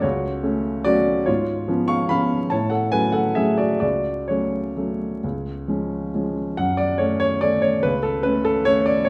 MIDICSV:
0, 0, Header, 1, 2, 480
1, 0, Start_track
1, 0, Key_signature, 3, "minor"
1, 0, Tempo, 410678
1, 43, Time_signature, 3, 2, 24, 8
1, 3406, Tempo, 459418
1, 7246, Tempo, 412088
1, 10160, End_track
2, 0, Start_track
2, 0, Title_t, "Grand piano"
2, 0, Program_c, 0, 0
2, 0, Control_c, 0, 64, 127
2, 20, Note_on_c, 0, 73, 64
2, 34, Note_on_c, 0, 66, 54
2, 39, Note_on_c, 0, 37, 60
2, 63, Control_c, 0, 64, 0
2, 273, Control_c, 0, 64, 127
2, 493, Note_off_c, 0, 37, 0
2, 508, Note_on_c, 0, 57, 48
2, 514, Note_on_c, 0, 61, 52
2, 705, Note_off_c, 0, 66, 0
2, 744, Note_off_c, 0, 73, 0
2, 962, Note_off_c, 0, 57, 0
2, 965, Note_off_c, 0, 61, 0
2, 988, Note_on_c, 0, 74, 97
2, 997, Note_on_c, 0, 66, 71
2, 1001, Note_on_c, 0, 54, 46
2, 1005, Note_on_c, 0, 57, 47
2, 1011, Note_on_c, 0, 61, 57
2, 1445, Note_off_c, 0, 54, 0
2, 1447, Note_off_c, 0, 57, 0
2, 1450, Note_off_c, 0, 61, 0
2, 1455, Note_off_c, 0, 66, 0
2, 1469, Note_on_c, 0, 73, 69
2, 1483, Note_on_c, 0, 65, 59
2, 1485, Note_off_c, 0, 74, 0
2, 1490, Note_on_c, 0, 44, 52
2, 1518, Control_c, 0, 64, 0
2, 1669, Control_c, 0, 64, 127
2, 1952, Note_off_c, 0, 44, 0
2, 1964, Note_on_c, 0, 53, 49
2, 1967, Note_on_c, 0, 59, 47
2, 1970, Note_on_c, 0, 61, 49
2, 2158, Note_off_c, 0, 65, 0
2, 2194, Note_on_c, 0, 85, 95
2, 2198, Note_off_c, 0, 73, 0
2, 2207, Note_on_c, 0, 77, 68
2, 2406, Note_off_c, 0, 53, 0
2, 2408, Note_off_c, 0, 59, 0
2, 2409, Note_off_c, 0, 61, 0
2, 2436, Note_off_c, 0, 77, 0
2, 2444, Note_on_c, 0, 83, 96
2, 2447, Note_off_c, 0, 85, 0
2, 2460, Note_on_c, 0, 53, 43
2, 2461, Note_on_c, 0, 77, 70
2, 2465, Note_on_c, 0, 59, 41
2, 2467, Note_on_c, 0, 61, 48
2, 2886, Note_off_c, 0, 53, 0
2, 2888, Note_off_c, 0, 59, 0
2, 2889, Note_off_c, 0, 61, 0
2, 2900, Note_off_c, 0, 77, 0
2, 2922, Note_on_c, 0, 81, 85
2, 2924, Note_off_c, 0, 83, 0
2, 2936, Note_on_c, 0, 73, 63
2, 2940, Note_on_c, 0, 45, 51
2, 2954, Control_c, 0, 64, 0
2, 3146, Control_c, 0, 64, 127
2, 3150, Note_off_c, 0, 73, 0
2, 3153, Note_on_c, 0, 78, 72
2, 3159, Note_off_c, 0, 81, 0
2, 3170, Note_on_c, 0, 69, 56
2, 3394, Note_off_c, 0, 69, 0
2, 3398, Note_off_c, 0, 45, 0
2, 3402, Note_off_c, 0, 78, 0
2, 3408, Note_on_c, 0, 80, 92
2, 3415, Note_on_c, 0, 71, 63
2, 3426, Note_on_c, 0, 54, 42
2, 3426, Note_on_c, 0, 57, 42
2, 3430, Note_on_c, 0, 61, 42
2, 3623, Note_off_c, 0, 71, 0
2, 3624, Note_on_c, 0, 78, 79
2, 3636, Note_off_c, 0, 80, 0
2, 3637, Note_on_c, 0, 69, 58
2, 3839, Note_off_c, 0, 54, 0
2, 3839, Note_off_c, 0, 57, 0
2, 3841, Note_off_c, 0, 61, 0
2, 3856, Note_off_c, 0, 69, 0
2, 3862, Note_on_c, 0, 76, 82
2, 3866, Note_off_c, 0, 78, 0
2, 3871, Note_on_c, 0, 68, 63
2, 3876, Note_on_c, 0, 54, 43
2, 3881, Note_on_c, 0, 57, 38
2, 3884, Note_on_c, 0, 61, 42
2, 4094, Note_off_c, 0, 68, 0
2, 4098, Note_on_c, 0, 74, 70
2, 4107, Note_off_c, 0, 76, 0
2, 4112, Note_on_c, 0, 66, 50
2, 4311, Note_off_c, 0, 54, 0
2, 4314, Note_off_c, 0, 57, 0
2, 4315, Note_off_c, 0, 61, 0
2, 4316, Note_off_c, 0, 74, 0
2, 4327, Note_off_c, 0, 66, 0
2, 4332, Note_on_c, 0, 74, 73
2, 4343, Note_on_c, 0, 66, 50
2, 4350, Note_on_c, 0, 37, 44
2, 4374, Control_c, 0, 64, 0
2, 4555, Control_c, 0, 64, 127
2, 4801, Note_off_c, 0, 66, 0
2, 4824, Note_off_c, 0, 37, 0
2, 4830, Note_off_c, 0, 74, 0
2, 4830, Note_on_c, 0, 73, 58
2, 4847, Note_on_c, 0, 66, 42
2, 4849, Note_on_c, 0, 54, 35
2, 4855, Note_on_c, 0, 57, 36
2, 4859, Note_on_c, 0, 61, 42
2, 5299, Note_off_c, 0, 54, 0
2, 5302, Note_off_c, 0, 57, 0
2, 5304, Note_off_c, 0, 61, 0
2, 5342, Note_on_c, 0, 54, 39
2, 5350, Note_on_c, 0, 57, 37
2, 5354, Note_on_c, 0, 61, 39
2, 5789, Note_off_c, 0, 54, 0
2, 5792, Note_off_c, 0, 57, 0
2, 5795, Note_off_c, 0, 61, 0
2, 5833, Note_on_c, 0, 37, 44
2, 5846, Control_c, 0, 64, 0
2, 6043, Control_c, 0, 64, 127
2, 6289, Note_off_c, 0, 37, 0
2, 6296, Note_on_c, 0, 53, 33
2, 6298, Note_on_c, 0, 56, 38
2, 6303, Note_on_c, 0, 61, 41
2, 6738, Note_off_c, 0, 53, 0
2, 6740, Note_off_c, 0, 56, 0
2, 6742, Note_off_c, 0, 61, 0
2, 6779, Note_on_c, 0, 53, 38
2, 6784, Note_on_c, 0, 56, 37
2, 6791, Note_on_c, 0, 61, 38
2, 6986, Note_off_c, 0, 66, 0
2, 7019, Note_off_c, 0, 73, 0
2, 7202, Note_off_c, 0, 53, 0
2, 7205, Note_off_c, 0, 56, 0
2, 7208, Note_off_c, 0, 61, 0
2, 7229, Note_on_c, 0, 78, 88
2, 7240, Note_on_c, 0, 42, 54
2, 7267, Control_c, 0, 64, 0
2, 7429, Control_c, 0, 64, 127
2, 7460, Note_on_c, 0, 74, 80
2, 7470, Note_off_c, 0, 78, 0
2, 7700, Note_on_c, 0, 73, 75
2, 7705, Note_off_c, 0, 42, 0
2, 7712, Note_off_c, 0, 74, 0
2, 7721, Note_on_c, 0, 61, 49
2, 7724, Note_on_c, 0, 57, 42
2, 7936, Note_off_c, 0, 73, 0
2, 7954, Note_on_c, 0, 73, 91
2, 8177, Note_off_c, 0, 61, 0
2, 8178, Note_off_c, 0, 57, 0
2, 8202, Note_on_c, 0, 74, 88
2, 8215, Note_off_c, 0, 73, 0
2, 8223, Note_on_c, 0, 57, 50
2, 8224, Note_on_c, 0, 61, 50
2, 8444, Note_on_c, 0, 73, 81
2, 8461, Note_off_c, 0, 74, 0
2, 8663, Note_off_c, 0, 57, 0
2, 8664, Note_off_c, 0, 61, 0
2, 8689, Note_on_c, 0, 71, 92
2, 8696, Note_off_c, 0, 73, 0
2, 8705, Note_on_c, 0, 37, 56
2, 8731, Control_c, 0, 64, 0
2, 8893, Control_c, 0, 64, 127
2, 8921, Note_on_c, 0, 69, 78
2, 8934, Note_off_c, 0, 71, 0
2, 9158, Note_on_c, 0, 71, 90
2, 9165, Note_off_c, 0, 37, 0
2, 9171, Note_off_c, 0, 69, 0
2, 9176, Note_on_c, 0, 57, 43
2, 9181, Note_on_c, 0, 61, 53
2, 9409, Note_on_c, 0, 69, 91
2, 9412, Note_off_c, 0, 71, 0
2, 9617, Note_off_c, 0, 57, 0
2, 9620, Note_off_c, 0, 61, 0
2, 9648, Note_on_c, 0, 73, 102
2, 9659, Note_off_c, 0, 69, 0
2, 9668, Note_on_c, 0, 57, 47
2, 9672, Note_on_c, 0, 61, 53
2, 9888, Note_on_c, 0, 74, 92
2, 9892, Note_off_c, 0, 73, 0
2, 10083, Note_off_c, 0, 57, 0
2, 10085, Note_off_c, 0, 61, 0
2, 10108, Note_on_c, 0, 73, 81
2, 10121, Note_off_c, 0, 74, 0
2, 10151, Control_c, 0, 64, 0
2, 10160, Note_off_c, 0, 73, 0
2, 10160, End_track
0, 0, End_of_file